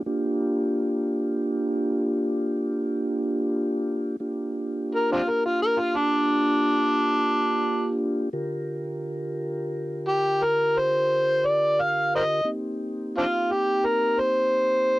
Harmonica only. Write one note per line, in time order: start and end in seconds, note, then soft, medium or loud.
4.95 5.09 A#4 loud
5.12 5.21 C4 medium
5.12 5.21 D4 medium
5.12 5.30 F4 medium
5.29 5.43 A#4 medium
5.45 5.60 F4 medium
5.62 5.81 A#4 loud
5.79 5.98 F4 medium
5.96 7.97 D4 loud
10.09 10.45 G4 loud
10.43 10.80 A#4 medium
10.79 11.47 C5 loud
11.46 11.83 D5 medium
11.81 12.12 F5 medium
12.15 12.23 A#4 medium
12.15 12.22 C5 medium
12.15 12.47 D#5 medium
13.18 13.25 C4 medium
13.18 13.25 D4 medium
13.18 13.54 F4 medium
13.52 13.87 G4 medium
13.86 14.22 A#4 medium
14.20 14.99 C5 loud